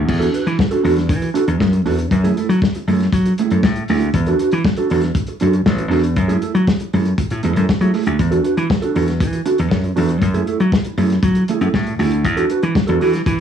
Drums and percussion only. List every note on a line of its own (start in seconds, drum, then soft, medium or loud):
0.08 kick loud
0.08 crash medium
0.22 closed hi-hat medium
0.34 closed hi-hat medium
0.47 closed hi-hat soft
0.59 kick loud
0.59 snare loud
0.71 closed hi-hat medium
0.85 open hi-hat medium
0.97 snare soft
0.97 closed hi-hat medium
1.09 kick loud
1.09 closed hi-hat medium
1.22 closed hi-hat soft
1.35 closed hi-hat medium
1.48 closed hi-hat soft
1.60 kick loud
1.60 snare loud
1.73 closed hi-hat soft
1.86 open hi-hat medium
1.99 closed hi-hat soft
2.11 kick loud
2.11 closed hi-hat medium
2.25 closed hi-hat medium
2.37 closed hi-hat medium
2.50 closed hi-hat soft
2.62 kick loud
2.62 snare loud
2.75 closed hi-hat medium
2.88 open hi-hat medium
3.01 snare soft
3.01 closed hi-hat medium
3.12 kick loud
3.12 closed hi-hat medium
3.25 closed hi-hat medium
3.38 closed hi-hat medium
3.50 closed hi-hat soft
3.63 kick loud
3.63 snare loud
3.76 closed hi-hat soft
3.88 open hi-hat medium
4.00 closed hi-hat soft
4.14 kick loud
4.14 closed hi-hat medium
4.26 closed hi-hat soft
4.39 closed hi-hat medium
4.52 closed hi-hat soft
4.65 kick loud
4.65 snare loud
4.77 closed hi-hat soft
4.90 open hi-hat medium
5.02 snare soft
5.02 closed hi-hat medium
5.15 kick loud
5.15 closed hi-hat medium
5.27 closed hi-hat soft
5.40 closed hi-hat medium
5.53 closed hi-hat soft
5.66 kick loud
5.66 snare loud
5.78 closed hi-hat soft
5.91 open hi-hat medium
6.03 closed hi-hat medium
6.16 kick loud
6.16 closed hi-hat medium
6.29 closed hi-hat soft
6.42 closed hi-hat medium
6.55 closed hi-hat soft
6.67 kick loud
6.67 snare loud
6.80 closed hi-hat medium
6.93 open hi-hat soft
7.05 closed hi-hat medium
7.18 kick loud
7.18 closed hi-hat medium
7.30 closed hi-hat medium
7.43 closed hi-hat medium
7.56 closed hi-hat medium
7.69 kick loud
7.69 snare loud
7.81 closed hi-hat soft
7.94 open hi-hat medium
8.06 closed hi-hat medium
8.19 kick loud
8.19 closed hi-hat medium
8.32 closed hi-hat soft
8.44 closed hi-hat medium
8.57 closed hi-hat soft
8.70 kick loud
8.70 snare loud
8.82 closed hi-hat medium
8.95 open hi-hat medium
9.08 snare soft
9.08 closed hi-hat medium
9.20 kick loud
9.20 closed hi-hat medium
9.33 closed hi-hat medium
9.45 closed hi-hat medium
9.58 closed hi-hat soft
9.71 kick loud
9.71 snare loud
9.83 closed hi-hat soft
9.96 open hi-hat medium
10.09 closed hi-hat soft
10.21 kick loud
10.21 closed hi-hat medium
10.34 closed hi-hat medium
10.47 closed hi-hat medium
10.60 closed hi-hat soft
10.72 kick loud
10.72 snare loud
10.85 closed hi-hat medium
10.98 open hi-hat medium
11.10 snare soft
11.10 closed hi-hat medium
11.23 kick loud
11.23 closed hi-hat medium
11.35 closed hi-hat soft
11.48 closed hi-hat medium
11.61 closed hi-hat soft
11.74 kick loud
11.74 snare loud
11.87 closed hi-hat soft
11.99 open hi-hat medium
12.12 closed hi-hat medium
12.25 kick loud
12.25 closed hi-hat medium
12.37 closed hi-hat medium
12.50 closed hi-hat medium
12.63 closed hi-hat soft
12.75 kick loud
12.75 snare loud
12.88 closed hi-hat medium
13.01 open hi-hat soft
13.13 snare soft
13.13 closed hi-hat medium
13.26 kick loud
13.26 closed hi-hat medium